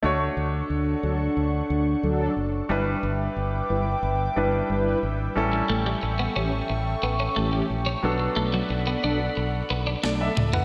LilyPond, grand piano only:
\new Staff \with { instrumentName = "Grand piano" } { \time 4/4 \key d \major \tempo 4 = 90 << { r1 | r1 | r1 | r2. d''16 e''8 fis''16 | } \\ { <a d' fis' cis''>1 | <g d' e' b'>2~ <g d' e' b'>8 <g d' e' b'>4. | <g cis' e' a'>1 | <fis b d' a'>1 | } >> }